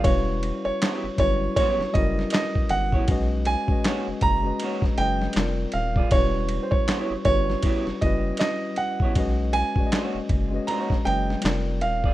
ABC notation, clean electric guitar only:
X:1
M:4/4
L:1/16
Q:"Swing 16ths" 1/4=79
K:Elyd
V:1 name="Clean electric guitar"
z4 [B,E=Gc] z3 [B,EGc] z6 [B,EGc] | z4 [A,DFc] z3 [A,DFc] z6 [=C=F_A=d] | z4 [B,E=Gc] z3 [B,EGc] z6 [B,EGc] | z4 [A,DFc] z3 [A,DFc] z6 [=C=F_A=d] |]